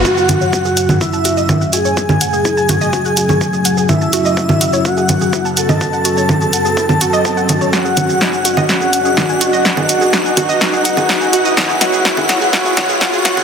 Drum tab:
HH |--x---x---x---x-|--x---x---x---x-|--x---x---x---x-|--x---x---x---x-|
SH |xxxxxxxxxxxxxxxx|xxxxxxxxxxxxxxxx|xxxxxxxxxxxxxxxx|xxxxxxxxxxxxxxxx|
SD |----------------|----------------|----------------|----------------|
CG |--O----O----O---|-O----O----O----|O----O----O----O|----O----O----O-|
BD |o---o---o---o---|o---o---o---o---|o---o---o---o---|o---o---o---o---|

HH |--x---x---x---x-|--x---x---x---x-|--x---x---x---x-|
SH |xxxxxxxxxxxxxxxx|xxxxxxxxxxxxxxxx|xxxxxxxxxxxxxxxx|
SD |o---o---o---o---|o---o---o---o---|o-o-o-o-o-o-o-o-|
CG |--O----O----O---|-O----O----O----|O----O----O----O|
BD |o---o---o---o---|o---o---o---o---|o---o---o---o---|